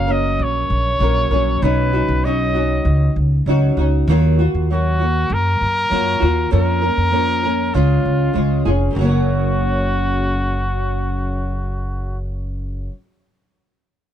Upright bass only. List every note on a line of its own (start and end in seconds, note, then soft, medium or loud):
0.00 0.37 F#1 loud
0.39 0.65 A#1 medium
0.70 0.96 A#1 medium
1.00 1.26 A#1 loud
1.31 1.57 A#1 medium
1.62 2.00 B1 loud
2.08 2.82 B1 medium
2.85 3.10 C#2 medium
3.16 3.41 C#2 medium
3.46 3.72 C#2 medium
3.77 4.02 C#2 medium
4.08 4.45 D#2 loud
4.54 5.27 D#2 medium
5.30 5.55 F#2 loud
5.61 5.86 F#2 medium
5.91 6.16 F#2 loud
6.22 6.47 D#2 medium
6.53 6.90 F2 loud
6.97 7.70 F2 medium
7.75 8.00 C#2 loud
8.05 8.30 C#2 medium
8.35 8.61 C#2 loud
8.66 8.91 F1 medium
8.96 12.87 F#1 loud